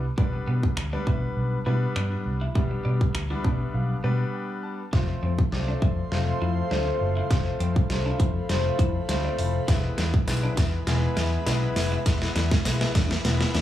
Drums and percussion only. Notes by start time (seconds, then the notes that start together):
0.18 kick
0.63 kick
0.77 finger snap
1.07 kick
1.96 finger snap
2.55 kick
3.01 kick
3.15 finger snap
3.44 kick
4.93 kick, snare
5.39 kick
5.52 snare
5.82 kick
6.12 snare
6.71 snare
7.31 kick, snare, closed hi-hat
7.60 closed hi-hat
7.76 kick
7.90 snare, closed hi-hat
8.20 kick, closed hi-hat
8.49 snare, closed hi-hat
8.79 kick, closed hi-hat
9.09 snare, closed hi-hat
9.39 open hi-hat
9.68 kick, snare, closed hi-hat, tambourine
9.98 snare, closed hi-hat, tambourine
10.14 kick
10.28 snare, closed hi-hat, tambourine
10.57 kick, snare, closed hi-hat, tambourine
10.87 snare, closed hi-hat
11.17 snare, closed hi-hat, tambourine
11.46 snare, closed hi-hat, tambourine
11.76 snare, open hi-hat, tambourine
12.06 kick, snare, closed hi-hat, tambourine
12.22 snare
12.36 snare, closed hi-hat, tambourine
12.51 kick, snare
12.65 snare, closed hi-hat, tambourine
12.81 snare
12.95 kick, snare, closed hi-hat, tambourine
13.11 snare
13.25 snare, closed hi-hat, tambourine
13.41 snare
13.55 snare, closed hi-hat